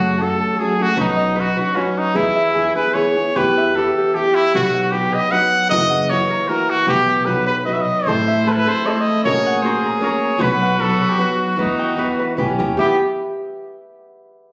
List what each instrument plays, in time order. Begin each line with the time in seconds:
Already playing: nylon-string guitar F#2 C#3 F#3 A3 C#4 F#4, upright bass F#2, trumpet F#4, harp F#4 A4 E5
0.00 harp F#5
0.18 nylon-string guitar F#3 A3 C#4, harp A4, trumpet A4
0.22 nylon-string guitar F#4
0.39 harp A4
0.56 nylon-string guitar F#3 A3 C#4, trumpet G#4, harp A4
0.61 nylon-string guitar F#4
0.79 nylon-string guitar F#3 A3 C#4 F#4, trumpet F#4
0.96 upright bass B1, nylon-string guitar B2 F#3 C#4 D#4 F#4, trumpet D#4, harp B4
1.16 harp D#5
1.35 nylon-string guitar F#3 C#4 D#4 F#4, harp B4
1.40 trumpet F#4
1.57 nylon-string guitar C#4 D#4 F#4, trumpet F#4, harp B4
1.74 nylon-string guitar F#3 C#4 D#4 F#4, trumpet C#4, harp B4
1.98 trumpet D#4
2.15 upright bass E2, nylon-string guitar E3 B3 E4 G#4, trumpet E4, harp G#4
2.36 harp E5
2.54 nylon-string guitar E3 B3 E4 G#4, harp G#4
2.75 nylon-string guitar B3 E4 G#4, harp G#4, trumpet B4
2.94 nylon-string guitar E3 B3 E4 G#4, harp G#4, trumpet C#5
3.16 nylon-string guitar B3 E4 G#4
3.35 upright bass E2, nylon-string guitar E3 B3 E4 G4, harp G4, trumpet B4
3.57 harp E5
3.74 nylon-string guitar E3 B3 E4 G4, harp G4, trumpet A4
3.98 harp G4
4.14 nylon-string guitar E3 B3 E4 G4, trumpet G4, harp G4
4.35 trumpet E4
4.54 upright bass B1, nylon-string guitar B2 F#3 B3 D#4 F#4, trumpet F#4, harp B4
4.74 harp F#5
4.91 nylon-string guitar F#3 B3 D#4 F#4, trumpet G4, harp B4
5.12 harp B4, trumpet D#5
5.31 nylon-string guitar F#3 B3 D#4 F#4, harp B4, trumpet F#5
5.69 upright bass F#1, nylon-string guitar F#2 C#3 E3 F#4, harp A#4, trumpet D#5
5.73 nylon-string guitar A#3 E4
5.90 harp F#5
6.09 nylon-string guitar E3 A#3 E4 F#4, harp A#4, trumpet C#5
6.30 harp A#4
6.48 nylon-string guitar E3 A#3 E4 F#4, trumpet A#4, harp A#4
6.70 trumpet F#4
6.87 upright bass B1, nylon-string guitar B2 E3 B3 E4 G4, trumpet G4, harp B4
7.08 harp G5
7.25 upright bass B1, nylon-string guitar F#3 B3 D#4 F#4, trumpet B4, harp B4
7.47 trumpet B4, harp B4
7.65 nylon-string guitar F#3 B3 D#4 F#4, harp B4, trumpet D#5
7.73 trumpet E5
7.81 trumpet D#5
8.06 upright bass A1, nylon-string guitar A2 E3 A3 C4 E4 A4, trumpet E4 C5, harp A4
8.27 harp E5
8.46 nylon-string guitar A3 C4 E4 A4, harp A4, trumpet B4
8.52 trumpet A4 B4
8.66 nylon-string guitar A3 C4 E4 A4, harp A4, trumpet C5
8.85 nylon-string guitar A3 C4 E4 A4, harp A4, trumpet D#5
8.90 trumpet C5
9.00 trumpet D#5
9.24 upright bass A#1, nylon-string guitar A#3 C#4 F#4 A#4, trumpet G#4 C#5, harp A#4
9.46 harp F#5
9.63 nylon-string guitar A#3 C#4 F#4 A#4, harp A#4, trumpet C5
9.86 harp A#4
10.00 nylon-string guitar A#3 C#4 F#4 A#4, harp A#4, trumpet C#5
10.38 upright bass B1, nylon-string guitar B2 F#3 B3 D#4 F#4, trumpet F#4 B4
10.42 harp B4
10.62 harp F#5
10.78 nylon-string guitar F#3 B3 D#4 F#4, trumpet A4
10.82 harp B4
11.01 harp B4
11.09 trumpet G4
11.18 nylon-string guitar F#3 B3 D#4 F#4, trumpet F#4, harp B4
11.56 upright bass E2, nylon-string guitar E3 B3, trumpet D#4, harp B4
11.79 harp G5
11.96 nylon-string guitar E3 B3 E4, harp B4
12.19 harp B4
12.37 upright bass B1, nylon-string guitar E3 B3 E4 G4, trumpet C#4, harp B4
12.59 upright bass D#2, nylon-string guitar B3 E4 G4
12.77 upright bass E2, nylon-string guitar E3 B3 E4 G4, trumpet B3 G4, harp G4 E5 B5